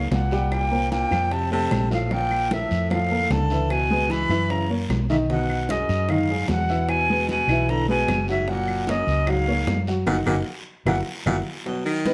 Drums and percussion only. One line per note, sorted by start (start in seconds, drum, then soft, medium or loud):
0.12 high bongo medium
0.12 low bongo medium
0.12 high conga medium
0.12 short guiro medium
0.31 short guiro medium
0.52 high bongo medium
0.52 high conga soft
0.52 long guiro medium
0.52 claves medium
0.72 high bongo soft
0.72 high conga soft
0.92 high bongo medium
0.92 high conga medium
0.92 short guiro medium
1.12 high bongo soft
1.12 high conga soft
1.12 short guiro medium
1.12 claves medium
1.31 high bongo medium
1.31 high conga soft
1.31 long guiro medium
1.51 high bongo soft
1.51 high conga soft
1.71 high bongo medium
1.71 low bongo medium
1.71 high conga medium
1.71 short guiro medium
1.71 claves medium
1.91 high conga soft
1.91 short guiro medium
2.11 high bongo medium
2.11 high conga soft
2.11 long guiro medium
2.31 high bongo soft
2.31 high conga soft
2.31 claves medium
2.51 high bongo medium
2.51 high conga medium
2.51 short guiro medium
2.71 high bongo soft
2.71 high conga soft
2.71 short guiro medium
2.90 high bongo medium
2.90 long guiro medium
2.90 claves medium
3.11 high bongo soft
3.11 high conga soft
3.30 high bongo medium
3.30 low bongo medium
3.30 high conga medium
3.30 short guiro medium
3.50 short guiro medium
3.70 high bongo medium
3.70 high conga soft
3.70 long guiro medium
3.70 claves medium
3.91 high bongo soft
3.91 high conga soft
4.10 high bongo medium
4.10 high conga medium
4.10 short guiro medium
4.30 high bongo soft
4.30 high conga soft
4.30 short guiro medium
4.30 claves medium
4.50 high bongo medium
4.50 high conga soft
4.50 long guiro medium
4.70 high bongo soft
4.70 high conga soft
4.90 high bongo medium
4.90 low bongo medium
4.90 high conga medium
4.90 short guiro medium
4.90 claves medium
5.10 high conga soft
5.10 short guiro medium
5.30 high bongo medium
5.30 high conga soft
5.30 long guiro medium
5.49 high bongo soft
5.49 high conga soft
5.49 claves medium
5.69 high bongo medium
5.69 high conga medium
5.69 short guiro medium
5.89 high bongo soft
5.89 high conga soft
5.89 short guiro medium
6.09 high bongo medium
6.09 high conga soft
6.09 long guiro medium
6.09 claves medium
6.29 high bongo soft
6.29 high conga soft
6.48 high bongo medium
6.48 low bongo medium
6.48 high conga medium
6.48 short guiro medium
6.69 short guiro medium
6.89 high bongo medium
6.89 high conga soft
6.89 long guiro medium
6.89 claves medium
7.09 high bongo soft
7.09 high conga soft
7.29 high bongo medium
7.29 high conga medium
7.29 short guiro medium
7.49 high bongo soft
7.49 high conga soft
7.49 short guiro medium
7.49 claves medium
7.68 high bongo medium
7.68 high conga soft
7.68 long guiro medium
7.89 high bongo soft
7.89 high conga soft
8.08 high bongo medium
8.08 low bongo medium
8.08 high conga medium
8.08 short guiro medium
8.08 claves medium
8.28 high conga soft
8.28 short guiro medium
8.48 high bongo medium
8.48 high conga soft
8.48 long guiro medium
8.68 high bongo soft
8.68 high conga soft
8.68 claves medium
8.87 high bongo medium
8.87 high conga medium
8.87 short guiro medium
9.08 high bongo soft
9.08 high conga soft
9.08 short guiro medium
9.27 high bongo medium
9.27 high conga soft
9.27 long guiro medium
9.27 claves medium
9.47 high bongo soft
9.47 high conga soft
9.67 high bongo medium
9.67 low bongo medium
9.67 high conga medium
9.67 short guiro medium
9.87 short guiro medium
10.07 low bongo medium
10.07 low conga medium
10.07 long guiro medium
10.07 claves medium
10.26 low bongo medium
10.26 low conga medium
10.26 long guiro medium
10.26 claves medium
10.86 low bongo loud
10.86 low conga medium
10.86 long guiro loud
10.86 claves loud
11.26 low bongo medium
11.26 low conga loud
11.26 long guiro medium
11.26 claves medium
11.66 high bongo medium
11.66 high conga soft
11.66 long guiro medium
11.86 high bongo soft
11.86 high conga soft
11.86 claves medium
12.06 high bongo medium
12.06 high conga medium
12.06 short guiro medium